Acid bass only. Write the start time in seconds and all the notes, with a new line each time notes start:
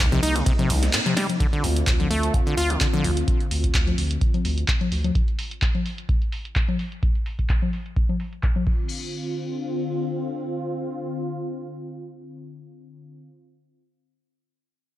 0.12 C3
0.23 D#4
0.35 C3
0.46 C3
0.59 C3
0.70 C2
0.93 A#2
1.06 C3
1.17 G3
1.40 D3
1.53 D3
1.64 D2
1.87 C3
2.00 D3
2.10 A3
2.34 D2
2.47 D3
2.57 F4
2.70 D3
2.81 D3
2.93 D3
3.04 D2